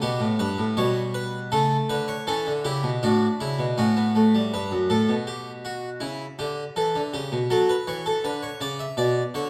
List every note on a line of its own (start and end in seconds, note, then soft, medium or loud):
0.02 0.21 B2 medium
0.02 0.75 B3 medium
0.02 0.25 G4 medium
0.20 0.39 A2 medium
0.39 0.58 G2 medium
0.39 0.63 B4 medium
0.58 0.77 A2 medium
0.77 1.50 B2 medium
0.77 1.50 G3 medium
0.77 1.00 C#5 medium
1.14 1.38 B4 medium
1.52 1.75 C#3 medium
1.52 2.25 A3 medium
1.52 1.75 A4 medium
1.90 2.13 D3 medium
1.90 2.08 B4 medium
2.08 2.27 C#5 medium
2.27 2.46 E3 medium
2.27 2.51 C#4 medium
2.27 2.51 A4 medium
2.47 2.65 D3 medium
2.65 2.83 C#3 medium
2.65 2.88 E4 medium
2.65 2.88 G4 medium
2.83 3.02 B2 medium
3.03 3.26 A2 medium
3.03 3.76 D4 medium
3.03 3.26 F#4 medium
3.41 3.59 C#3 medium
3.41 3.64 E4 medium
3.59 3.77 B2 medium
3.78 4.51 A2 medium
3.78 3.96 C#4 medium
3.78 4.51 F#4 medium
3.97 4.15 B3 medium
4.15 4.33 A3 medium
4.35 4.53 G3 medium
4.54 4.71 G2 medium
4.54 4.77 B4 medium
4.71 4.90 F#2 soft
4.90 5.08 A2 medium
4.90 5.13 A4 medium
5.09 5.99 B2 medium
5.27 5.50 G4 medium
5.65 5.88 F#4 medium
6.00 6.24 C#3 medium
6.00 6.24 E4 medium
6.39 6.62 D3 medium
6.39 6.62 G4 medium
6.76 6.95 E3 medium
6.76 7.00 A4 medium
6.96 7.14 D3 medium
7.14 7.32 C#3 medium
7.14 7.37 G4 medium
7.32 7.51 B2 medium
7.50 7.74 F#3 medium
7.50 7.69 A4 medium
7.69 7.88 B4 medium
7.87 8.11 E3 medium
7.87 8.06 C#5 medium
8.06 8.25 A4 medium
8.24 8.48 D3 medium
8.24 8.43 B4 medium
8.43 8.62 C#5 medium
8.61 8.84 C#3 medium
8.61 8.80 D5 medium
8.79 8.98 E5 medium
8.97 9.21 B2 medium
8.97 9.21 D5 medium
9.34 9.50 D3 medium
9.34 9.50 C#5 medium